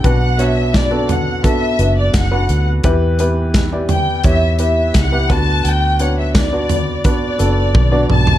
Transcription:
<<
  \new Staff \with { instrumentName = "Violin section" } { \time 4/4 \key b \minor \tempo 4 = 86 fis''8 e''8 d''8 fis''8 e''8. d''16 fis''8. r16 | r4. g''8 e''8 e''8 fis''8 a''8 | g''8 fis''16 e''16 d''4 d''4. a''8 | }
  \new Staff \with { instrumentName = "Upright piano" } { \time 4/4 \key b \minor <b d' fis' b'>8 <b d' fis' cis''>8. <b d' fis' a'>8. <b d' fis' a'>8 <b d' fis' b'>8. <b d' fis' b'>8. | <b e' g' b'>8 <b e' g' b'>8. <b e' g' d''>8. <b e' g' cis''>8 <b e' g' b'>8. <b e' g' b'>16 <b d' fis' b'>8~ | <b d' fis' b'>16 r16 <b d' fis' cis''>8. <b d' fis' d''>8. <b d' fis' b'>8 <b d' fis' a'>8. <b d' fis' d''>8. | }
  \new Staff \with { instrumentName = "Upright piano" } { \clef bass \time 4/4 \key b \minor b,4. r2 r8 | e4. r2 d8~ | d4 r2. | }
  \new Staff \with { instrumentName = "Fingered electric bass" } { \clef bass \time 4/4 \key b \minor b,,2~ b,,8 fis,,8 fis,,8 d,8 | e,2 e,4 cis,8 d,8 | d,2~ d,8 fis,,8 b,,8 b,,8 | }
  \new DrumStaff \with { instrumentName = "Drums" } \drummode { \time 4/4 <hh bd>8 hh8 <hh bd sn>8 <hh tomfh>8 <hh bd>8 hh8 <hh bd sn>8 hh8 | <hh bd>8 hh8 <hh bd sn>8 <hh tomfh>8 <hh bd>8 hh8 <hh bd sn>8 <hh bd>8 | hh8 hh8 <hh bd sn>8 <hh tomfh>8 <hh bd>8 hh8 <bd tommh>8 toml16 tomfh16 | }
>>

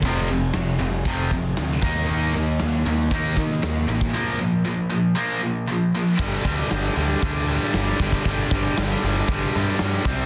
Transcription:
<<
  \new Staff \with { instrumentName = "Distorted electric guitar" } { \clef bass \time 4/4 \key g \minor \tempo 4 = 117 <f, c f>8 <f, c>8 <f, c>8 <f, c>8 <f, c f>8 <f, c>8 <f, c>8 <ees bes ees'>8 | <ees bes ees'>8 <ees bes>8 <ees bes>8 <ees bes>8 <ees bes ees'>8 <ees bes>8 <ees bes>8 <ees bes>8 | <bes, f bes>8 <bes, f>8 <bes, f>8 <bes, f>8 <bes, f bes>8 <bes, f>8 <bes, f>8 <bes, f>8 | <g, d g>8 <g, d g>8 <g, d g>8 <g, d g>8 <g, d g>8 <g, d g>8 <g, d g>8 <g, d g>8 |
<g, d g>8 <g, d g>8 <g, d g>8 <g, d g>8 <g, d g>8 <g, d g>8 <g, d g>8 <c g c'>8 | }
  \new Staff \with { instrumentName = "Picked electric bass" } { \clef bass \time 4/4 \key g \minor f,,4 f,,8 f,,8 f,,8 f,,8 d,8 ees,8 | ees,8 ees,8 ees,8 ees,8 ees,8 ees8 ees,8 a,,8 | r1 | g,,8 d,8 g,,8 d,8 d,4 g,,8 g,,8 |
g,,8 g,,8 g,,8 g,,8 g,,8 g,8 g,8 c,8 | }
  \new DrumStaff \with { instrumentName = "Drums" } \drummode { \time 4/4 <bd cymr>8 cymr8 <cymr sn>8 cymr8 <bd cymr>8 <bd cymr>8 <cymr sn>16 sn16 <bd cymr>8 | cymr8 cymr8 <cymr sn>8 cymr8 <bd cymr>8 <bd cymr>16 sn16 <cymr sn>8 cymr16 bd16 | r4 r4 r4 r4 | <cymc bd>8 <cymc bd>8 <cymc sn>8 cymc8 <cymc bd>8 cymc16 sn16 <cymc sn>8 <cymc bd>16 bd16 |
<cymc bd>8 <cymc bd>8 <cymc sn>8 cymc8 <cymc bd>8 cymc8 <cymc sn>16 sn16 <cymc bd>8 | }
>>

